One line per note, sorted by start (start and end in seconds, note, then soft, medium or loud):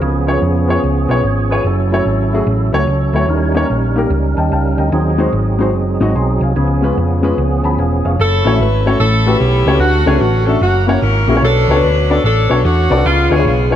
0.01 0.36 C#2 loud
0.01 0.65 C#3 medium
0.01 1.62 F3 medium
0.01 1.62 B3 medium
0.01 1.62 C#4 medium
0.01 1.62 G#4 medium
0.27 0.36 B3 medium
0.27 0.36 F4 medium
0.27 0.37 G#4 medium
0.27 0.37 C#5 medium
0.42 0.77 F2 medium
0.68 0.77 B3 medium
0.68 0.78 F4 medium
0.68 0.78 G#4 medium
0.68 0.78 C#5 medium
0.84 1.06 C#2 medium
1.09 1.22 B1 medium
1.09 1.18 B3 medium
1.09 1.18 F4 medium
1.09 1.19 G#4 medium
1.09 1.19 C#5 medium
1.23 1.58 G#1 medium
1.23 1.50 C#5 medium
1.50 1.60 B3 medium
1.50 1.60 F4 medium
1.50 1.60 G#4 medium
1.50 1.60 C#5 medium
1.50 1.65 G#5 medium
1.64 2.00 F#1 medium
1.64 3.27 F#3 medium
1.64 2.72 C#4 medium
1.64 2.72 E4 medium
1.64 2.72 A4 medium
1.91 2.00 A3 medium
1.91 2.01 E4 medium
1.91 2.01 F#4 medium
1.91 2.02 C#5 medium
2.06 2.41 G#1 medium
2.33 2.42 A3 medium
2.33 2.42 E4 medium
2.33 2.42 F#4 medium
2.33 2.43 G#4 medium
2.47 2.69 A1 medium
2.73 2.86 C#2 medium
2.73 2.82 A3 medium
2.73 2.88 A3 soft
2.73 2.82 E4 medium
2.73 2.87 F#4 medium
2.73 2.83 F#4 medium
2.73 2.83 C#5 medium
2.87 3.10 C#2 medium
2.87 3.13 C#4 medium
2.87 3.13 A4 medium
3.13 3.26 D2 medium
3.13 3.23 A3 medium
3.13 3.23 E4 medium
3.13 3.53 E4 medium
3.13 3.24 F#4 medium
3.13 3.52 C#5 medium
3.13 3.24 C#5 medium
3.28 3.63 D#2 medium
3.28 3.93 D#3 medium
3.28 4.90 G3 medium
3.28 4.90 C#4 medium
3.28 4.90 D#4 medium
3.28 4.90 A#4 medium
3.54 3.64 A#3 medium
3.54 3.64 D#4 medium
3.54 3.64 G4 medium
3.54 3.65 C#5 medium
3.70 4.05 A#1 medium
3.96 4.05 A#3 medium
3.96 4.05 D#4 medium
3.96 4.06 G4 medium
3.96 4.06 A#4 medium
4.10 4.33 C#2 loud
4.37 4.49 D#2 medium
4.37 4.52 D#5 medium
4.37 4.51 G5 medium
4.37 4.51 A5 medium
4.52 4.74 C#2 medium
4.52 4.77 F5 soft
4.52 4.77 G5 medium
4.52 4.77 A5 medium
4.78 4.90 D2 medium
4.78 5.17 D#5 medium
4.78 5.17 G5 medium
4.92 5.27 D#2 loud
4.92 5.56 D#3 medium
4.92 6.53 F#3 medium
4.92 6.53 C4 medium
4.92 6.53 D#4 medium
4.92 6.53 G#4 medium
5.18 5.28 G#3 medium
5.18 5.28 D#4 medium
5.18 5.28 F#4 medium
5.18 5.28 C5 medium
5.33 5.74 G#1 medium
5.59 5.68 G#3 medium
5.59 5.69 D#4 medium
5.59 5.69 F#4 medium
5.59 5.69 C5 medium
5.74 5.97 F#1 medium
6.00 6.13 G#1 medium
6.00 6.10 G#3 medium
6.00 6.10 D#4 medium
6.00 6.10 F#4 medium
6.00 6.10 D#5 medium
6.15 6.38 B1 medium
6.15 6.41 G#5 soft
6.15 6.40 C6 medium
6.41 6.53 C2 medium
6.41 6.81 F5 medium
6.41 6.81 G#5 medium
6.56 6.91 C#2 medium
6.56 7.19 C#3 medium
6.56 8.16 F3 medium
6.56 8.16 B3 medium
6.56 8.16 C#4 medium
6.56 8.16 G#4 medium
6.82 6.91 G#3 medium
6.82 6.91 C#4 medium
6.82 6.92 F4 medium
6.82 6.92 B4 medium
6.97 7.32 F2 medium
7.23 7.32 G#3 medium
7.23 7.32 C#4 medium
7.23 7.32 F4 medium
7.23 7.33 B4 medium
7.38 7.60 C#2 medium
7.64 7.76 D2 medium
7.64 7.78 G#5 medium
7.64 7.78 A5 medium
7.64 7.78 B5 medium
7.78 8.01 E1 medium
7.78 8.04 F5 soft
7.78 8.03 G#5 medium
8.05 8.17 F1 medium
8.05 8.44 C#5 soft
8.05 8.44 F5 medium
8.19 8.42 F#1 loud
8.19 8.97 C#4 medium
8.19 8.98 E4 medium
8.19 8.58 A4 loud
8.45 8.58 A1 medium
8.45 8.49 A3 medium
8.45 8.49 C#4 medium
8.45 8.50 E4 medium
8.45 8.50 F#4 medium
8.45 8.51 C#5 medium
8.53 8.63 A3 medium
8.53 8.63 C#4 medium
8.53 8.63 E4 medium
8.53 8.63 F#4 medium
8.53 8.63 E5 medium
8.60 8.94 G#1 loud
8.60 8.85 B4 medium
8.85 8.94 A3 medium
8.85 8.95 C#4 medium
8.85 8.95 E4 medium
8.85 8.95 F#4 medium
8.85 8.98 A4 medium
8.85 8.95 C#5 medium
8.99 9.35 A1 loud
8.99 9.63 A2 medium
8.99 9.39 C#4 medium
8.99 9.77 E4 medium
8.99 9.38 A4 loud
9.26 9.35 A3 medium
9.26 9.35 C#4 medium
9.26 9.35 F#4 medium
9.26 9.36 G4 medium
9.26 9.36 B4 medium
9.39 9.63 B1 loud
9.39 9.78 B3 medium
9.39 9.78 C#4 medium
9.39 9.81 G4 medium
9.66 9.79 C#2 medium
9.66 9.71 A3 medium
9.66 9.71 C#4 medium
9.66 9.71 F#4 medium
9.66 9.72 G4 medium
9.66 9.72 C#5 medium
9.74 9.81 A3 medium
9.74 9.81 C#4 medium
9.74 9.81 F#4 medium
9.74 9.82 G4 medium
9.74 9.82 B4 medium
9.79 10.02 D2 loud
9.79 10.43 D3 medium
9.79 10.58 A3 medium
9.79 10.58 C#4 medium
9.79 10.07 F#4 loud
10.05 10.19 C#2 loud
10.05 10.11 A3 medium
10.05 10.11 C#4 medium
10.05 10.11 D4 medium
10.05 10.12 F#4 medium
10.05 10.22 G#4 medium
10.05 10.12 C#5 medium
10.13 10.24 A3 medium
10.13 10.24 C#4 medium
10.13 10.25 D4 medium
10.13 10.25 F#4 medium
10.13 10.25 B4 medium
10.20 10.55 A1 medium
10.20 10.48 F#4 medium
10.46 10.56 A3 medium
10.46 10.56 C#4 medium
10.46 10.56 D4 medium
10.46 10.57 F#4 medium
10.46 10.62 A4 medium
10.46 10.57 E5 medium
10.61 10.96 F#1 loud
10.61 11.39 A#3 medium
10.61 11.01 C#4 medium
10.61 10.86 F#4 medium
10.87 10.96 A#3 medium
10.87 10.97 C#4 medium
10.87 10.97 E4 medium
10.87 10.97 F#4 medium
10.87 11.02 F#4 medium
10.87 10.98 C#5 medium
11.01 11.25 G#1 medium
11.01 11.40 C#4 medium
11.01 11.40 E4 medium
11.01 11.36 A#4 loud
11.27 11.40 A#1 medium
11.27 11.33 A#3 medium
11.27 11.33 C#4 medium
11.27 11.33 E4 medium
11.27 11.33 F#4 medium
11.27 11.34 G#4 medium
11.35 11.43 A#3 medium
11.35 11.43 C#4 medium
11.35 11.43 E4 medium
11.35 11.43 F#4 medium
11.35 11.44 C#5 medium
11.42 11.65 B1 loud
11.42 12.05 B2 medium
11.42 12.20 C#4 medium
11.42 12.20 D4 medium
11.42 11.81 A4 loud
11.68 11.81 C#2 loud
11.68 11.73 B3 medium
11.68 11.74 D4 medium
11.68 11.74 F#4 medium
11.68 11.74 A4 medium
11.68 11.75 C#5 medium
11.75 11.86 B3 medium
11.75 11.86 D4 medium
11.75 11.86 F#4 medium
11.75 11.86 A4 medium
11.75 11.87 B4 medium
11.83 12.18 D2 medium
11.83 12.09 B4 medium
12.09 12.18 B3 medium
12.09 12.19 D4 medium
12.09 12.19 F#4 medium
12.09 12.19 A4 medium
12.09 12.24 A4 loud
12.09 12.19 D5 medium
12.24 12.46 A1 loud
12.24 13.01 C#4 medium
12.24 12.63 D4 medium
12.24 12.62 A4 loud
12.49 12.63 B1 medium
12.49 12.58 B3 medium
12.49 12.59 D4 medium
12.49 12.59 F#4 medium
12.49 12.59 A4 medium
12.49 12.59 C#5 medium
12.64 12.87 E2 loud
12.64 13.02 A3 medium
12.64 13.02 D4 medium
12.64 13.05 F#4 loud
12.90 13.03 C2 loud
12.90 12.94 B3 medium
12.90 12.95 D4 medium
12.90 12.95 F#4 medium
12.90 12.95 A4 medium
12.90 12.96 D5 medium
12.96 13.04 B3 medium
12.96 13.04 D4 medium
12.96 13.05 F#4 medium
12.96 13.05 A4 medium
12.96 13.05 D5 medium
13.04 13.27 C#2 loud
13.04 13.67 C#3 medium
13.04 13.76 G#3 medium
13.04 13.76 B3 medium
13.04 13.31 F4 loud
13.29 13.46 D2 medium
13.29 13.35 B3 medium
13.29 13.35 D4 medium
13.29 13.35 F4 medium
13.29 13.35 G#4 medium
13.29 13.46 G#4 loud
13.29 13.36 C#5 medium
13.37 13.48 B3 medium
13.37 13.48 D4 medium
13.37 13.49 F4 medium
13.37 13.49 G#4 medium
13.37 13.49 C#5 medium
13.45 13.76 B1 medium
13.45 13.70 G#4 medium
13.70 13.76 B3 medium
13.70 13.76 D4 medium
13.70 13.76 F4 medium
13.70 13.76 G#4 medium
13.70 13.76 C#5 medium